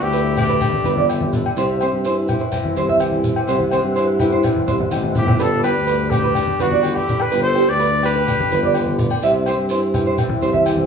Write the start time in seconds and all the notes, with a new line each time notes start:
Already playing: G2 D3 B3 D4 B4 E5
0.00 D2 E4 G4
0.13 D3 B4, maracas
0.37 D4, low conga, low agogo, maracas
0.41 G4
0.50 B4
0.61 G2, low conga, low agogo, maracas
0.73 high conga
0.84 G1 B4, high conga, maracas
0.97 D5, high conga
1.09 D3, low agogo, maracas
1.21 high conga
1.33 D4, low conga, maracas
1.46 low agogo
1.56 C2 C3 G3 C5, maracas
1.81 C4 C5, low agogo, maracas
1.92 G2
2.04 E3 C5, maracas
2.28 E4, low conga, low agogo, maracas
2.41 muted clean electric guitar stroke
2.52 G2, low conga, low agogo, maracas
2.65 high conga
2.75 C2 C5, high conga, maracas
2.89 E5, high conga
3.00 E3, low agogo, maracas
3.12 high conga
3.24 muted nylon-string guitar stroke, low conga, maracas
3.36 low agogo
3.47 C2 C3 C5 F#5, muted nylon-string guitar stroke, maracas
3.60 high conga
3.71 C4 C5, low agogo, maracas
3.83 G2
3.95 E3 C5, maracas
4.19 E4, low conga, low agogo, maracas
4.32 C5
4.43 G2, low conga, low agogo, maracas
4.56 high conga
4.68 C2 C5, high conga, low conga, maracas
4.80 muted clean electric guitar stroke, high conga
4.90 A1 B2, high conga, low agogo, maracas
5.03 high conga
5.15 G1 A2 E4 G4, low conga, maracas
5.27 low conga, low agogo
5.39 G1 G2 B3 D4 A4 B4 D5, maracas
5.63 D4 G4 B4, low agogo, maracas
5.77 D2
5.87 D3 B4, maracas
6.10 D4 G4, low conga, low agogo, maracas
6.24 B4
6.35 G2, low conga, low agogo, maracas
6.47 high conga
6.60 G1 D4 F#4 B4, high conga, maracas
6.72 D5, high conga
6.83 D3, low agogo, maracas
6.95 E4 G4, high conga
7.08 D4, low conga, maracas
7.20 G4 B4, low agogo
7.32 G1 G2 B3 B4, maracas
7.43 A4 C5
7.55 D4 G4, low agogo, maracas
7.68 D2 B4 D5
7.79 D3 B4, maracas
8.03 G4 B4, low agogo, maracas
8.16 B4
8.27 muted nylon-string guitar stroke, low conga, low agogo, maracas
8.40 high conga
8.50 G1 B4, high conga, maracas
8.63 D5, high conga
8.74 D3, low agogo, maracas
8.86 high conga
8.98 B3, low conga, maracas
9.10 D4, low agogo
9.22 C2 C3 G3 C5 E5, maracas
9.46 C4 C5, low agogo, maracas
9.58 G2
9.69 E3 C5, maracas
9.94 E4, low conga, low agogo, maracas
10.07 C5
10.18 G2, low conga, low agogo, maracas
10.29 high conga
10.41 C2 C5, high conga, maracas
10.53 E5, high conga
10.66 E3, low agogo, maracas
10.77 high conga